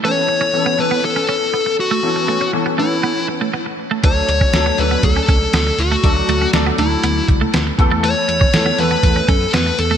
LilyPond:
<<
  \new Staff \with { instrumentName = "Lead electric guitar" } { \time 4/4 \key a \major \tempo 4 = 120 cis''4. b'8 a'4. fis'8~ | fis'4 r8 e'4 r4. | cis''4. b'8 a'4. fis'8~ | fis'4 r8 e'4 r4. |
cis''4. b'4 a'8 b'8 a'8 | }
  \new Staff \with { instrumentName = "Clean electric guitar" } { \time 4/4 \key a \major a16 r8 cis'16 r16 b16 r16 b16 r16 cis'16 cis'16 r16 b16 r8 a16 | r8 a16 cis'16 r16 b16 a16 r16 b16 r8 a16 b16 r8 a16 | d'16 r8 cis'16 r16 b16 r16 b16 r16 cis'16 cis'16 r16 b16 r8 a16 | r8 a16 cis'16 r16 b16 a16 r16 b16 r8 a16 b16 r8 a16 |
a16 r8 cis'16 r16 b16 r16 b16 r16 cis'16 cis'16 r16 b16 r8 a16 | }
  \new Staff \with { instrumentName = "Grand piano" } { \time 4/4 \key a \major <e b cis' a'>4 <e b cis' a'>8 <e b cis' a'>2 r8 | <e b cis' a'>4 <e b cis' a'>8 <e b cis' a'>2 r8 | <fis a d' a'>4 <fis a d' a'>8 <fis a d' a'>2 r8 | <fis a d' a'>4 <fis a d' a'>8 <fis a d' a'>2 <e a b a'>8~ |
<e a b a'>4 <e a b a'>8 <e a b a'>2 r8 | }
  \new Staff \with { instrumentName = "Analog synth bass" } { \clef bass \time 4/4 \key a \major r1 | r1 | d,8 d,8 d,8 d,8 d,8 cis,8 d,8 d,8 | d,8 d,8 d,8 d,8 d,8 cis,8 d,8 e,8~ |
e,8 e,8 e,8 e,8 e,8 fis,8 e,8 e,8 | }
  \new DrumStaff \with { instrumentName = "Drums" } \drummode { \time 4/4 r4 r4 r4 r4 | r4 r4 r4 r4 | <hh bd>8 hh16 bd16 <hh sn>8 hh8 <hh bd>8 <hh bd>8 <hh sn>8 hh8 | <hh bd>8 hh8 <hh sn>8 hh8 hh8 <hh bd>8 <hh sn>8 <hh bd>8 |
hh8 hh16 bd16 <hh sn>8 hh8 <hh bd>8 <hh bd>8 <hh sn>8 hh8 | }
>>